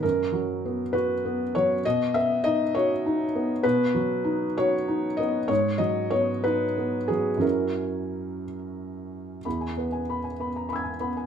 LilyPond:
<<
  \new Staff \with { instrumentName = "Felt piano" } { \time 6/8 \key b \major \tempo 4. = 64 << { ais'4. b'4 cis''8 | dis''8 e''8 dis''8 cis''4. | b'4. cis''4 dis''8 | cis''8 dis''8 cis''8 b'4 gis'8 |
ais'4. r4. | r2 <b'' e''' gis'''>4 | } \\ { r2. | r2. | r2. | r2. |
r2. | b''16 gis''16 b'16 gis''16 b''16 gis''16 b''16 ais''16 r16 gis''16 b''16 gis''16 | } >> }
  \new Staff \with { instrumentName = "Felt piano" } { \time 6/8 \key b \major fis,8 fis8 b8 fis'8 b8 fis8 | b,8 b8 dis'8 fis'8 dis'8 b8 | b,8 fis8 dis'8 fis'8 dis'8 b8 | gis,8 fis8 b8 dis'8 b8 fis8 |
<fis, fis cis' e'>2. | e,8 b4 b4 b8 | }
>>